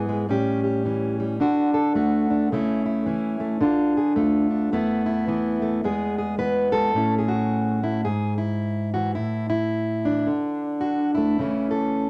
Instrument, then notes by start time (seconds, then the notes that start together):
steel-string acoustic guitar
Already playing: G#2 E3 B3 G#4
0.09 G#3
0.29 A2 G3 C#4 G4
0.64 G4
0.85 E3 C#4
1.20 G3
1.40 D3 D4 F#4
1.74 A4
1.95 A3 F#4
2.30 D4
2.52 C#3 A3 C#4 E4
2.86 E4
3.06 E3 C#4
3.40 A3
3.61 D3 D4 F4
3.97 G#4
4.16 A3 F4
4.50 D4
4.72 E2 A3 B3 E4
5.06 E4
5.28 E3 B3
5.62 A3
5.84 E2 G#3 B3 G#4
6.18 G#4
6.38 E3 B3 B4
6.72 G#3 A4
6.94 A2 A3 C#4 E4
7.18 G#4
7.28 F#4
7.83 A3 E4
8.05 G#2 G#4
8.38 E4
8.94 E3 F#4
9.15 A2 E4
9.50 E4
10.05 E3 D4
10.27 D3
10.81 F#4
11.15 A3 E4
11.39 C#3 E3 A3 C#4
11.71 A4